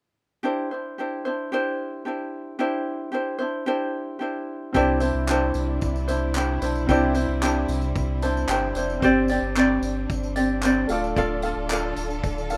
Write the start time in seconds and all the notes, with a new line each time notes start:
0.43 D4 E4 G4 C5
0.71 D4 E4 C5
0.98 D4 E4 G4 C5
1.25 D4 E4 C5
1.52 D4 E4 G4 C5
2.05 D4 E4 G4 C5
2.59 D4 E4 G4 C5
3.12 D4 E4 G4 C5
3.39 D4 E4 C5
3.66 D4 E4 G4 C5
4.19 D4 E4 G4 C5
4.73 C2 C3 G3 C4 D4 E4 G4 C5, kick, tambourine
4.77 D5
5.00 D4 E4 C5, tambourine
5.14 C2
5.27 D4 E4 G4, clap, tambourine
5.31 C5
5.54 C2, tambourine
5.81 C2, kick, tambourine
5.96 tambourine
6.08 D4 E4 C5, tambourine
6.35 D4 E4 G4 C5, clap, tambourine
6.62 B1 D4 E4 C5, tambourine
6.76 tambourine
6.87 C2 C4 D4 E4 G4 C5, kick, tambourine
6.91 D5
7.15 D4 E4 C5, tambourine
7.28 C2
7.42 D4 E4 G4 C5, clap, tambourine
7.68 C2, tambourine
7.82 tambourine
7.96 C2, kick, tambourine
8.22 D4 E4 C5 A5, tambourine
8.37 tambourine
8.48 G1 D4 E4 G4 C5 G5, clap, tambourine
8.75 F1 E4 C5, tambourine
8.79 D4
8.90 tambourine
9.00 G1 C4 D4 G4 C5, kick, tambourine
9.04 G4 D5
9.28 C4 G4 D5, tambourine
9.42 G1
9.56 C4 G4 C5 D5, clap, tambourine
9.82 G1, tambourine
10.10 G1, kick, tambourine
10.23 tambourine
10.36 C4 G4 D5, tambourine
10.63 C4 G4 C5 D5, clap, tambourine
10.88 D1 D3 A3 F4 A4 D5 F5, tambourine
10.92 F4
11.04 tambourine
11.16 D1 F4 A4 D5 F5, kick, tambourine
11.42 F4 A4 F5, tambourine
11.56 D1
11.70 F4 A4 D5 F5, clap, tambourine
11.96 D1, tambourine
12.10 tambourine
12.23 D1, kick, tambourine
12.38 tambourine
12.50 F4 A4 F5, tambourine